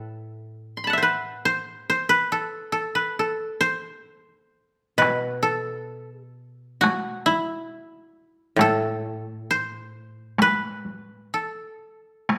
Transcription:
Already playing: koto A2 E4 F#4 A4 B4
0.77 koto C6
0.84 koto A5 B5
0.90 koto E5 F#5
0.98 koto C5
1.02 koto B4
1.45 koto C5
1.90 koto C5
2.09 koto B4
2.32 koto A4
2.72 koto A4
2.95 koto B4
3.19 koto A4
3.61 koto C5
4.98 koto B2 B4, taiko rim, taiko high
5.43 koto A4
6.32 koto F#4
6.81 koto F#4, taiko rim, taiko high
7.26 koto E4, taiko high
8.56 koto A2, taiko rim, taiko high
8.61 koto A4
9.51 koto C5
10.38 koto B4, taiko rim, taiko high
10.85 taiko high
11.34 koto A4
12.29 taiko rim, taiko high

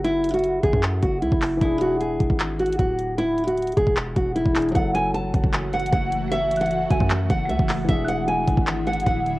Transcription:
Already playing: 808-style bass F#1, grand piano F#3 E4 A4
0.04 nylon-string guitar E4, closed hi-hat
0.24 closed hi-hat
0.29 closed hi-hat
0.34 nylon-string guitar F#4, closed hi-hat
0.39 closed hi-hat
0.44 closed hi-hat
0.63 808-style bass F#1, nylon-string guitar G#4, kick, closed hi-hat
0.73 808-style bass F#2, kick
0.83 clap, closed hi-hat
1.02 808-style bass F#1, nylon-string guitar F#4, kick, closed hi-hat
1.22 808-style bass C#2, nylon-string guitar E4, closed hi-hat
1.32 808-style bass F#1, kick
1.42 clap, open hi-hat
1.57 grand piano E3 D4
1.61 808-style bass E1, nylon-string guitar E4, grand piano G#4, kick, closed hi-hat
1.81 nylon-string guitar F#4, closed hi-hat
2.00 nylon-string guitar G#4, closed hi-hat
2.20 808-style bass E1, kick, closed hi-hat
2.30 808-style bass G#1, kick
2.40 clap, closed hi-hat
2.59 nylon-string guitar F#4, closed hi-hat
2.66 closed hi-hat
2.72 closed hi-hat
2.79 808-style bass D1, nylon-string guitar F#4, kick, closed hi-hat
2.99 closed hi-hat
3.18 nylon-string guitar E4, closed hi-hat
3.38 closed hi-hat
3.47 nylon-string guitar F#4, closed hi-hat
3.57 closed hi-hat
3.62 closed hi-hat
3.67 closed hi-hat
3.72 closed hi-hat
3.77 808-style bass E1, nylon-string guitar G#4, kick, closed hi-hat
3.87 808-style bass E1, kick
3.97 clap, closed hi-hat
4.16 808-style bass E1, nylon-string guitar F#4, kick, closed hi-hat
4.36 nylon-string guitar E4, closed hi-hat
4.46 808-style bass E1, kick
4.54 grand piano E3 D4 G#4, clap, closed hi-hat, open hi-hat
4.62 closed hi-hat
4.69 grand piano F#3, closed hi-hat
4.75 808-style bass F#1, ambient pad E3 A3 F#4, grand piano E4 A4, nylon-string guitar F#5, kick, closed hi-hat
4.94 nylon-string guitar G#5, closed hi-hat
5.14 nylon-string guitar A5, closed hi-hat
5.34 808-style bass F#1, kick, closed hi-hat
5.44 808-style bass F#1, kick
5.54 clap, closed hi-hat
5.73 nylon-string guitar F#5, closed hi-hat
5.80 closed hi-hat
5.86 closed hi-hat
5.92 808-style bass F#1, nylon-string guitar F#5, kick, closed hi-hat
6.12 closed hi-hat
6.32 nylon-string guitar E5, closed hi-hat
6.52 closed hi-hat
6.56 closed hi-hat
6.61 nylon-string guitar F#5, closed hi-hat
6.66 closed hi-hat
6.71 closed hi-hat
6.91 808-style bass F#1, nylon-string guitar G#5, kick, closed hi-hat
7.01 808-style bass F#2, kick
7.10 clap, closed hi-hat
7.30 808-style bass F#1, nylon-string guitar F#5, kick, closed hi-hat
7.49 808-style bass C#2, nylon-string guitar E5, closed hi-hat
7.59 808-style bass F#1, kick
7.69 clap, open hi-hat
7.85 grand piano E3 D4
7.89 808-style bass E1, ambient pad D3 G#3 E4, grand piano G#4, nylon-string guitar E5, kick, closed hi-hat
8.08 nylon-string guitar F#5, closed hi-hat
8.28 nylon-string guitar G#5, closed hi-hat
8.48 808-style bass E1, kick, closed hi-hat
8.57 808-style bass G#1, kick
8.67 clap, closed hi-hat
8.87 nylon-string guitar F#5, closed hi-hat
8.93 closed hi-hat
9.00 closed hi-hat
9.06 808-style bass D1, nylon-string guitar F#5, kick, closed hi-hat
9.26 closed hi-hat

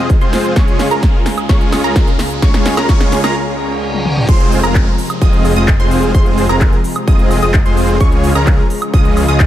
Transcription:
Already playing: analog synth pad F2 C3 G#3 F4 C5, riser
0.00 supersaw synth G#3 C4 F4 G#4 D#5, synth pluck D#6
0.10 kick, closed hi-hat, shaker
0.21 supersaw synth G#3 C4 F4 G#4 C5, synth pluck C6, closed hi-hat
0.33 snare, open hi-hat, shaker
0.45 closed hi-hat, shaker
0.56 analog synth pad C#2 C#3 G#4, supersaw synth G#3 C#4 F4 G#4 C#5, synth pluck C#6, kick, snare, closed hi-hat, shaker
0.68 closed hi-hat
0.79 snare, open hi-hat, shaker
0.91 supersaw synth G#3 C#4 F4 G#4 A#4, synth pluck A#5, closed hi-hat, shaker
1.03 kick, snare, closed hi-hat, shaker
1.26 snare, open hi-hat, shaker
1.38 closed hi-hat, high woodblock, shaker
1.49 supersaw synth G#3 C#4 F4 G#4 C#5, synth pluck C#6, kick, snare, closed hi-hat, shaker
1.61 closed hi-hat
1.72 snare, open hi-hat, high woodblock, shaker
1.84 supersaw synth G#3 C#4 F4 G#4 A#4, synth pluck A#5, shaker
1.96 kick, snare, closed hi-hat, shaker
2.07 closed hi-hat
2.19 snare, open hi-hat, shaker
2.31 closed hi-hat, shaker
2.42 supersaw synth G#3 C#4 F4 G#4 C#5, synth pluck C#6, kick, snare, closed hi-hat, shaker
2.54 snare, closed hi-hat
2.66 snare, open hi-hat, shaker
2.77 supersaw synth G#3 C#4 F4 G#4 A#4, synth pluck A#5, snare, closed hi-hat, high woodblock, shaker
2.89 supersaw synth G#3 C#4 F4 G#4 C#5, synth pluck C#6, kick, snare, closed hi-hat, shaker
3.01 snare
3.12 snare, open hi-hat, shaker
3.24 supersaw synth G#3 C#4 F4 G#4 A#4, synth pluck A#5, snare, closed hi-hat, high woodblock, shaker
3.35 reverse cymbal
3.94 high tom
4.05 mid tom
4.17 mid tom
4.28 detuned saw bass F1, analog synth pad C3 F3 G#3, supersaw synth G#3 C4 F4 G#4 C5, synth pluck C6, kick, closed hi-hat, crash, downlifter, shaker
4.40 closed hi-hat
4.52 open hi-hat, shaker
4.63 detuned saw bass F1, supersaw synth G#3 C4 F4 G#4 A#4, synth pluck A#5, closed hi-hat, high woodblock, shaker
4.75 kick, clap, closed hi-hat, shaker
4.98 open hi-hat, shaker
5.10 closed hi-hat, high woodblock, shaker
5.21 detuned saw bass F1, supersaw synth G#3 C4 F4 G#4 D#5, synth pluck D#6, kick, closed hi-hat, shaker
5.33 closed hi-hat
5.45 open hi-hat, high woodblock, shaker
5.56 detuned saw bass F1, supersaw synth G#3 C4 F4 G#4 D#5, synth pluck D#6, closed hi-hat, shaker
5.68 kick, clap, closed hi-hat, shaker
5.80 detuned saw bass F1, supersaw synth G#3 C4 F4 G#4 C5, synth pluck C6, closed hi-hat
5.91 open hi-hat, shaker
6.03 closed hi-hat, shaker
6.14 detuned saw bass F1, supersaw synth G#3 C4 F4 G#4 C5, synth pluck C6, kick, closed hi-hat, shaker
6.26 closed hi-hat
6.38 open hi-hat, shaker
6.49 detuned saw bass F1, supersaw synth G#3 C4 F4 G#4 A#4, synth pluck A#5, closed hi-hat, high woodblock, shaker
6.61 kick, clap, closed hi-hat, shaker
6.73 closed hi-hat
6.84 open hi-hat, shaker
6.96 closed hi-hat, high woodblock, shaker
7.07 detuned saw bass F1, supersaw synth G#3 C4 F4 G#4 D#5, synth pluck D#6, kick, closed hi-hat, shaker
7.19 closed hi-hat
7.31 open hi-hat, high woodblock, shaker
7.42 detuned saw bass F1, supersaw synth G#3 C4 F4 G#4 D#5, synth pluck D#6, closed hi-hat, shaker
7.54 kick, clap, closed hi-hat, shaker
7.66 detuned saw bass F1, supersaw synth G#3 C4 F4 G#4 C5, synth pluck C6, closed hi-hat
7.77 open hi-hat, shaker
7.89 closed hi-hat, shaker
8.00 detuned saw bass C#2, analog synth pad C#3 F3 G#3, supersaw synth G#3 C#4 F4 G#4 C#5, synth pluck C#6, kick, closed hi-hat, shaker
8.12 closed hi-hat
8.24 open hi-hat, shaker
8.35 detuned saw bass C#2, supersaw synth G#3 C#4 F4 G#4 A#4, synth pluck A#5, closed hi-hat, high woodblock, shaker
8.47 kick, clap, closed hi-hat, shaker
8.70 open hi-hat, shaker
8.82 closed hi-hat, high woodblock, shaker
8.94 detuned saw bass C#2, supersaw synth G#3 C#4 F4 G#4 D#5, synth pluck D#6, kick, closed hi-hat, shaker
9.05 closed hi-hat
9.17 open hi-hat, high woodblock, shaker
9.28 detuned saw bass C#2, supersaw synth G#3 C#4 F4 G#4 D#5, synth pluck D#6, closed hi-hat, shaker
9.40 kick, clap, closed hi-hat, shaker

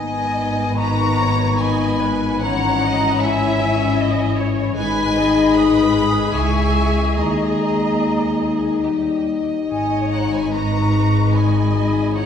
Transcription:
Already playing: double bass section G#1, cello section G#2, french horn section D#3 B3, violin section D#4 B4 D#5, flute section G#5
0.77 viola section B4, violin section A#5, flute section C#6
1.19 viola section C#5
1.60 viola section D#5, violin section G#5, flute section B5
2.01 viola section B4
2.42 french horn section E3 C#4, violin section E4 C#5 F#5, viola section C#5, flute section A#5
2.84 viola section D#5
3.22 violin section E5, viola section E5, flute section G#5
3.99 viola section D#5
4.38 viola section C#5
4.76 double bass section G#1, cello section G#2, french horn section G#3 D#4, violin section G#4 D#5 G#5, viola section B4, flute section B5
5.16 viola section D#5
5.54 viola section B4, violin section B5, flute section D#6
6.34 double bass section C#2, cello section C#2, french horn section E4, violin section E5 G#5, viola section E5, flute section C#6
7.17 double bass section D#2, cello section D#2, french horn section D#4, viola section D#5, violin section D#5, flute section A#5
8.83 french horn section G3, violin section G4
9.70 double bass section G#1, cello section G#2, french horn section G#3, violin section D#4 D#5, viola section C#5, flute section G#5
10.12 violin section F#5, flute section A#5
10.33 violin section G#5, flute section B5
10.54 viola section B4, violin section A#5, flute section C#6
11.36 viola section D#5, violin section G#5, flute section B5
12.13 violin section E4 C#5 F#5, french horn section E4, viola section C#5, flute section A#5

